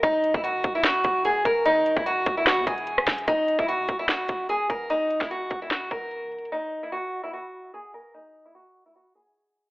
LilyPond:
<<
  \new Staff \with { instrumentName = "Steel-string acoustic guitar" } { \time 4/4 \key ees \phrygian \tempo 4 = 148 ees'8. e'16 ges'8. e'16 ges'4 gis'8 bes'8 | ees'8. e'16 ges'8. e'16 ges'8 gis'4. | ees'8. fes'16 ges'8. fes'16 ges'4 aes'8 bes'8 | ees'8. fes'16 ges'8. fes'16 ges'8 bes'4. |
ees'8. fes'16 ges'8. fes'16 ges'4 aes'8 bes'8 | ees'8. fes'16 ges'8. fes'16 ges'8 aes'4. | }
  \new Staff \with { instrumentName = "808-style bass" } { \clef bass \time 4/4 \key ees \phrygian e,,8. e,,8. e,,4 e,,4 e,,8 | gis,,16. e,,16. e,,8. e,,8. e,16 e,,4 e,,8 | ees,,8. ees,,8 ges,,16 ees,,4 ees,,4 ees,,8~ | ees,,8. ees,,8. ees,,4 ees,,8. des,,16. ees,,16. |
r1 | r1 | }
  \new DrumStaff \with { instrumentName = "Drums" } \drummode { \time 4/4 <hh bd>8 hh16 bd16 hh8 <hh bd>8 <hh sn>8 <hh bd>8 hh8 <hh bd>8 | hh8 hh16 bd16 hh8 <hh bd>8 <ss sn>8 <hh bd>16 hh16 hh16 ss16 <hh hho bd sn>16 hh16 | <hh bd>8 hh16 bd16 hh8 <hh bd>8 <hh sn>8 <hh bd>8 hh8 <hh bd>8 | hh8 hh16 <bd sn>16 hh8 <hh bd>8 sn8 <hh bd>8 \tuplet 3/2 { hh16 r16 r16 hh16 hh16 hh16 } |
r4 r4 r4 r4 | r4 r4 r4 r4 | }
>>